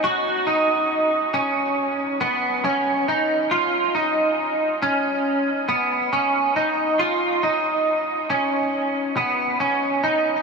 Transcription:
\new Staff \with { instrumentName = "Clean electric guitar" } { \time 4/4 \key ces \lydian \tempo 4 = 69 ges'8 ees'4 des'4 ces'8 des'8 ees'8 | f'8 ees'4 des'4 ces'8 des'8 ees'8 | f'8 ees'4 des'4 ces'8 des'8 ees'8 | }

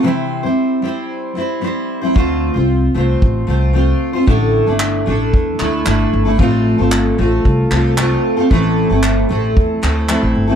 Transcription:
<<
  \new Staff \with { instrumentName = "Steel-string acoustic guitar" } { \time 4/4 \key a \phrygian \tempo 4 = 113 <c e g c' e' c''>8. <g c' e' c''>8. <g c' e' c''>4 <g c' e' c''>8 <g c' e' c''>8. <g c' e' c''>16 | <d a c' f' c''>8. <c' f' c''>8. <a c' f' c''>4 <a c' f' c''>8 <a c' f' c''>8. <c' f' c''>16 | <a, d a d' e' a'>8. <a d' e' a'>8. <a d' e' a'>4 <a d' e' a'>8 <a d' e' a'>8. <a d' e' a'>16 | <a, f a c' f' a'>8. <a c' f' a'>8. <a c' f' a'>4 <a c' f' a'>8 <a c' f' a'>8. <a c' f' a'>16 |
<a, e a c' e' a'>8. <a c' e' a'>8. <a c' e' a'>4 <a c' e' a'>8 <a c' e' a'>8. <a c' e' a'>16 | }
  \new Staff \with { instrumentName = "Upright bass" } { \clef bass \time 4/4 \key a \phrygian r1 | d,8. c,8. c,8 a,,8 c,4 r8 | a,,8. g,,8. a,,8 e,8 d,8 g,,8 g,,8 | a,,8. g,,8. a,,8 c,8 c,4 r8 |
a,,8. g,,8. a,,8 e,8 d,8. a,,16 g,,8 | }
  \new DrumStaff \with { instrumentName = "Drums" } \drummode { \time 4/4 r4 r4 r4 r4 | bd4 r4 bd4 r4 | bd4 hc4 bd8 hc8 hc4 | bd4 hc4 bd8 hc8 hc4 |
bd4 hc4 bd8 hc8 hc4 | }
>>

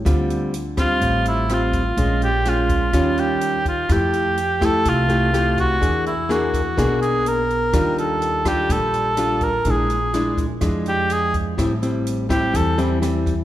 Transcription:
<<
  \new Staff \with { instrumentName = "Cor anglais" } { \time 4/4 \key d \minor \tempo 4 = 125 r4. f'4 e'8 f'4~ | f'8 g'8 f'4. g'4 f'8 | g'4. a'8 f'4. fis'8~ | fis'8 e'8 fis'4. gis'8 ais'4~ |
ais'8 a'4 g'8 a'4. bes'8 | aes'4. r4 g'8 aes'8 r8 | r4. g'8 a'8 r4. | }
  \new Staff \with { instrumentName = "Nylon-string guitar" } { \time 4/4 \key d \minor << { <g c' f'>4 r8 <g c' f'>4. <g c' f'>8 r8 | <aes des' f'>8 r8 <aes des' f'>4 <g des' f'>4. r8 | <a e' g'>4 r8 <a e' g'>4 <a e' g'>8 <a e' g'>4 | <ais d' gis'>8 r8 <ais d' gis'>8 r8 <ais d' gis'>4. r8 |
<g d' f'>4. <g d' f'>4. <g d' f'>8 r8 | <aes d' e'>8 r8 <aes d' e'>8 r8 <aes d' e'>2 | <g c' e'>8 <g c' e'>4 <g c' e'>4 <g c' e'>8 <g c' e'>8 r8 | } \\ { d2 a,2 | bes,2 ees2 | f2 c2 | e2 b,2 |
ees2 bes,2 | bes,2 f2 | a,2 e2 | } >> }
  \new Staff \with { instrumentName = "Upright bass" } { \clef bass \time 4/4 \key d \minor d,2 a,,2 | bes,,2 ees,2 | f,2 c,2 | e,2 b,,2 |
ees,2 bes,,2 | bes,,2 f,2 | a,,2 e,2 | }
  \new DrumStaff \with { instrumentName = "Drums" } \drummode { \time 4/4 <hh bd ss>8 hh8 hh8 <hh bd ss>8 <hh bd>8 hh8 <hh ss>8 <hh bd>8 | <hh bd>8 hh8 <hh ss>8 <hh bd>8 <hh bd ss>8 hh8 hh8 <hh bd>8 | <hh bd ss>8 hh8 hh8 <hh bd ss>8 <hh bd>8 hh8 <hh ss>8 <hh bd>8 | <hh bd>8 hh8 <hh ss>8 <hh bd>8 <hh bd ss>8 hh8 hh8 hh8 |
<hh bd ss>8 hh8 hh8 <hh bd ss>8 <hh bd>8 hh8 <hh ss>8 <hh bd>8 | <hh bd>8 hh8 <hh ss>8 <hh bd>8 <hh bd ss>8 hh8 hh8 <hh bd>8 | <hh bd ss>8 hh8 hh8 <hh bd ss>8 <hh bd>8 hh8 <hh ss>8 <hh bd>8 | }
>>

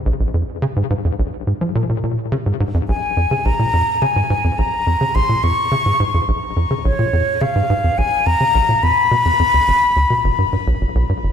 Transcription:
<<
  \new Staff \with { instrumentName = "Flute" } { \time 4/4 \key bes \minor \tempo 4 = 106 r1 | r4 aes''4 bes''4 aes''4 | bes''4 c'''8 des'''4. r4 | des''4 f''4 aes''8 bes''4 ces'''8~ |
ces'''2. r4 | }
  \new Staff \with { instrumentName = "Analog synth bass" } { \clef bass \time 4/4 \key bes \minor bes,,16 bes,,16 f,16 r16 des16 aes,16 aes,16 f,16 bes,,16 r16 aes,16 f16 bes,16 bes,16 bes,16 r16 | des16 aes,16 aes,16 f,16 bes,,16 r16 f,16 des16 bes,,16 bes,16 f,16 r16 des16 aes,16 aes,16 f,16 | bes,,16 r16 f,16 des16 bes,,16 bes,16 f,16 r16 des16 aes,16 aes,16 f,16 bes,,16 r16 f,16 des16 | bes,,16 bes,16 f,16 r16 des16 aes,16 aes,16 f,16 bes,,16 r16 f,16 des16 bes,,16 bes,16 f,16 r16 |
b,16 f,16 f,16 d,16 g,,16 r16 d,16 b,16 g,,16 g,16 g,16 b,,16 g,,16 b,,16 g,16 g,,16 | }
>>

